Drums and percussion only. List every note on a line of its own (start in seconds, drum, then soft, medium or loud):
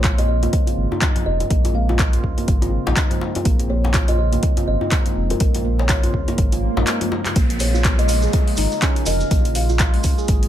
0.04 kick loud
0.04 clap loud
0.04 closed hi-hat medium
0.18 closed hi-hat soft
0.18 djembe tone medium
0.43 closed hi-hat soft
0.43 djembe tone medium
0.53 kick loud
0.53 closed hi-hat medium
0.67 closed hi-hat soft
0.67 djembe tone medium
0.92 djembe tone medium
1.02 kick loud
1.02 clap loud
1.02 closed hi-hat medium
1.02 djembe slap medium
1.16 closed hi-hat soft
1.16 djembe tone medium
1.40 closed hi-hat soft
1.40 djembe tone medium
1.50 kick loud
1.50 closed hi-hat medium
1.65 closed hi-hat soft
1.65 djembe tone medium
1.89 djembe slap medium
1.89 djembe tone medium
1.99 kick loud
1.99 clap loud
1.99 closed hi-hat medium
2.13 closed hi-hat soft
2.13 djembe tone medium
2.24 kick medium
2.38 closed hi-hat soft
2.38 djembe tone medium
2.48 kick loud
2.48 closed hi-hat medium
2.62 closed hi-hat soft
2.62 djembe tone medium
2.87 djembe slap loud
2.87 djembe tone medium
2.97 kick loud
2.97 clap loud
2.97 closed hi-hat medium
3.11 closed hi-hat soft
3.11 djembe tone loud
3.21 djembe slap loud
3.35 closed hi-hat soft
3.35 djembe tone medium
3.45 kick loud
3.45 closed hi-hat medium
3.59 closed hi-hat soft
3.59 djembe tone medium
3.84 djembe slap medium
3.84 djembe tone medium
3.94 kick loud
3.94 clap loud
3.94 closed hi-hat medium
4.08 closed hi-hat soft
4.08 djembe tone medium
4.33 closed hi-hat soft
4.33 djembe tone medium
4.43 kick loud
4.43 closed hi-hat medium
4.57 closed hi-hat soft
4.57 djembe tone medium
4.81 djembe tone medium
4.92 kick loud
4.92 clap loud
4.92 closed hi-hat medium
4.92 djembe slap medium
5.06 closed hi-hat soft
5.06 djembe tone medium
5.30 closed hi-hat soft
5.30 djembe tone medium
5.40 kick loud
5.40 closed hi-hat medium
5.55 closed hi-hat medium
5.55 djembe tone medium
5.79 djembe slap medium
5.79 djembe tone medium
5.89 kick loud
5.89 clap loud
5.89 closed hi-hat medium
6.03 closed hi-hat soft
6.03 djembe tone medium
6.14 kick medium
6.28 closed hi-hat soft
6.28 djembe slap medium
6.28 djembe tone medium
6.38 kick loud
6.38 closed hi-hat medium
6.52 closed hi-hat soft
6.52 djembe tone medium
6.77 djembe slap loud
6.77 djembe tone medium
6.87 clap loud
6.87 closed hi-hat medium
7.01 closed hi-hat soft
7.01 djembe tone medium
7.12 djembe slap loud
7.26 clap medium
7.26 closed hi-hat soft
7.26 djembe tone medium
7.36 kick loud
7.36 closed hi-hat medium
7.36 maracas soft
7.50 closed hi-hat medium
7.60 open hi-hat medium
7.60 maracas medium
7.75 maracas medium
7.84 kick loud
7.84 clap loud
7.84 closed hi-hat medium
7.84 maracas soft
7.99 closed hi-hat soft
8.08 open hi-hat loud
8.08 maracas medium
8.22 maracas medium
8.33 kick loud
8.33 closed hi-hat medium
8.33 maracas soft
8.47 open hi-hat medium
8.57 open hi-hat loud
8.57 maracas medium
8.72 maracas soft
8.82 kick loud
8.82 clap loud
8.82 closed hi-hat medium
8.82 maracas soft
8.96 closed hi-hat soft
9.06 open hi-hat medium
9.06 maracas loud
9.20 maracas medium
9.31 kick loud
9.31 closed hi-hat medium
9.31 maracas soft
9.45 closed hi-hat soft
9.55 open hi-hat medium
9.55 maracas loud
9.69 maracas medium
9.79 kick loud
9.79 clap loud
9.79 closed hi-hat medium
9.79 maracas soft
9.94 open hi-hat medium
10.03 kick medium
10.03 open hi-hat medium
10.03 maracas medium
10.18 maracas soft
10.28 kick loud
10.28 closed hi-hat medium
10.28 maracas soft
10.43 closed hi-hat soft